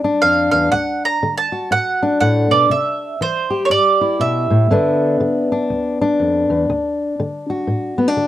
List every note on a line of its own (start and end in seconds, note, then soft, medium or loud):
0.00 0.19 D2 medium
0.04 0.70 D4 medium
0.22 0.53 F2 medium
0.22 0.50 F5 loud
0.51 0.72 E2 medium
0.51 0.70 F5 medium
0.72 1.18 D2 medium
0.72 1.05 F#5 medium
1.05 1.36 A#5 medium
1.23 1.68 D3 medium
1.38 1.72 A5 medium
1.52 2.69 F#4 medium
1.71 2.17 A2 medium
1.71 2.19 F#5 loud
2.03 2.69 D4 medium
2.20 2.50 A2 medium
2.20 2.52 F#5 medium
2.51 2.69 B2 medium
2.51 2.71 D5 medium
2.70 3.16 C3 medium
2.70 3.22 E5 medium
3.21 3.67 E3 medium
3.21 3.63 C5 medium
3.50 4.67 G4 medium
3.65 3.71 C#5 medium
3.70 4.16 G2 medium
3.70 4.20 D5 medium
4.01 4.68 E4 medium
4.20 4.50 B2 medium
4.20 5.66 E5 medium
4.50 4.70 A2 medium
4.71 5.16 G2 medium
4.71 5.19 D3 medium
4.71 6.68 B3 medium
4.71 5.51 D4 medium
5.20 5.66 D3 medium
5.52 6.01 D4 medium
5.70 6.16 D2 medium
6.01 7.98 D4 medium
6.20 6.50 F2 medium
6.50 6.69 E2 medium
6.70 7.15 D2 medium
7.20 7.65 D3 medium
7.50 8.27 F#4 medium
7.67 8.14 A2 medium
7.98 8.08 B3 medium
8.08 8.27 D4 medium
8.17 8.27 D3 medium